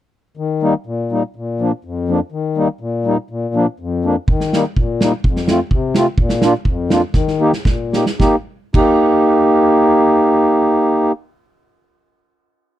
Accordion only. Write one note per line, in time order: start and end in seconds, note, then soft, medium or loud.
0.37 0.74 D#3 medium
0.62 0.73 G3 medium
0.62 0.74 A#3 medium
0.62 0.74 D#4 medium
0.86 1.23 A#2 medium
1.11 1.22 G3 medium
1.11 1.23 A#3 medium
1.11 1.23 D#4 medium
1.36 1.72 A#2 medium
1.60 1.71 F3 medium
1.60 1.71 A#3 medium
1.60 1.72 D4 medium
1.85 2.21 F2 medium
2.08 2.19 F3 medium
2.08 2.20 A#3 medium
2.08 2.20 D4 medium
2.32 2.69 D#3 medium
2.56 2.67 G3 medium
2.56 2.68 A#3 medium
2.56 2.68 D#4 medium
2.81 3.17 A#2 medium
3.05 3.16 G3 medium
3.05 3.17 A#3 medium
3.05 3.17 D#4 medium
3.30 3.67 A#2 medium
3.54 3.65 F3 medium
3.54 3.66 A#3 medium
3.54 3.66 D4 medium
3.80 4.17 F2 medium
4.04 4.15 F3 medium
4.04 4.15 A#3 medium
4.04 4.16 D4 medium
4.29 4.65 D#3 medium
4.53 4.64 G3 medium
4.53 4.64 A#3 medium
4.53 4.65 D#4 medium
4.77 5.13 A#2 medium
5.02 5.12 G3 medium
5.02 5.12 A#3 medium
5.02 5.13 D#4 medium
5.26 5.60 F2 medium
5.49 5.59 A3 medium
5.49 5.60 C4 medium
5.49 5.60 F4 medium
5.73 6.07 C3 medium
5.96 6.06 A3 medium
5.96 6.06 C4 medium
5.96 6.07 F4 medium
6.19 6.54 A#2 medium
6.43 6.53 A#3 medium
6.43 6.53 D4 medium
6.43 6.53 F4 medium
6.67 7.03 F2 medium
6.90 7.01 A#3 medium
6.90 7.01 D4 medium
6.90 7.02 F4 medium
7.14 7.52 D#3 medium
7.40 7.51 A#3 medium
7.40 7.51 D#4 medium
7.40 7.52 G4 medium
7.66 8.06 A#2 medium
7.92 8.04 A#3 medium
7.92 8.05 D#4 medium
7.92 8.05 G4 medium
8.20 8.36 A#3 medium
8.20 8.36 D#4 medium
8.20 8.36 G4 medium
8.76 11.12 A#3 medium
8.76 11.12 D#4 medium
8.76 11.12 G4 medium